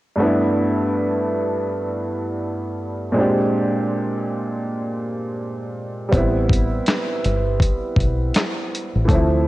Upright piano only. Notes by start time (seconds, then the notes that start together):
0.16 G2 A3
0.20 B3 D4
0.24 E4
3.12 A#2 G#3
3.16 C4 D4
3.21 G4
6.09 G3 B3
6.14 C4 E4
9.05 E3 A3
9.11 F3 C4 E4